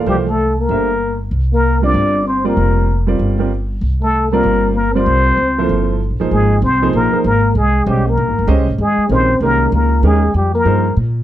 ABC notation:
X:1
M:4/4
L:1/8
Q:"Swing" 1/4=192
K:Cmix
V:1 name="Muted trumpet"
G A2 B4 z | z B2 d3 c B- | B3 z4 z | z A2 B3 B c- |
c6 z2 | [K:Ab] A2 c2 B2 B2 | A2 G B3 z2 | A2 c2 B2 B2 |
A2 G B3 z2 |]
V:2 name="Grand piano"
[E,F,B,EAcdf]2 z2 [A,DGce] z3 | z3 [G,CFBd]3 z [G,CFBd]- | [G,CFBd]2 z [G,CFBd]2 [G,CFBd] z2 | z3 [G,CFBd]3 z [G,CFBd]- |
[G,CFBd]2 z [F,B,EAc]3 z [F,B,_E_Ac]- | [K:Ab] [F,B,EAc]2 z [F,B,EAc]2 [F,B,EAc] z2 | z2 [A,DGce] z3 [A,DGce] z | z2 [E,A,DGB] z [E,A,DGB]3 z |
[E,A,DGB] z3 [F,B,EAc] z3 |]
V:3 name="Trombone"
G, A,2 B,4 z | z B,2 D3 C B,- | B,3 z4 z | z A,2 B,3 B, C- |
C6 z2 | [K:Ab] A,2 C2 B,2 B,2 | A,2 G, B,3 z2 | A,2 C2 B,2 B,2 |
A,2 G, B,3 z2 |]
V:4 name="Upright bass" clef=bass
C,,4 G,,,4 | C,,4 G,,,4 | F,,,4 G,,,4 | C,,4 G,,,4 |
C,,2 _D,,2 G,,,2- (3G,,, B,,, G,,, | [K:Ab] A,,,2 C,,2 B,,, z A,,,2 | C,,2 _C,,2 (3B,,, A,,, G,,, (3D,, =C,, A,,, | E,, z B,,,2 C,,2 D,,2 |
E,,2 F,,2 G,,2 B,,2 |]